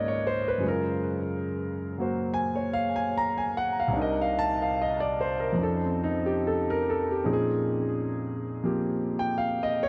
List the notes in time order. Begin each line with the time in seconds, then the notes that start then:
Already playing: C#2 G#2 C#3 D#3 A#3 B3 D#4 F4 G#4 A#4 B4 C#5 D5 D#5
0.08 C#5
0.27 C5
0.48 B4
0.58 F#2 C#3
0.63 G#3 F4
0.68 A#4
1.98 F#3 A#3 F#4 C5
2.34 G#5
2.56 C#5
2.73 F5
2.96 G#5
3.17 A#5
3.37 G#5
3.57 F#5
3.80 F5
3.88 C2 C3
3.93 D4 D#4
3.99 A#4 D#5
4.22 F5
4.39 A5
4.62 F5
4.82 D#5
5.00 D5
5.21 C5
5.40 A#4
5.53 F2 F3
5.58 C#4 D#4
5.63 A4
5.85 C4
6.04 D#4
6.26 G4
6.47 A4
6.70 A#4
6.90 A4
7.11 G4
7.24 A#2 F3 C4 C#4 D#4 G#4
7.33 G#4
8.63 F3 A#3 C4 G4
9.19 G5
9.38 F5
9.63 D#5
9.83 C#5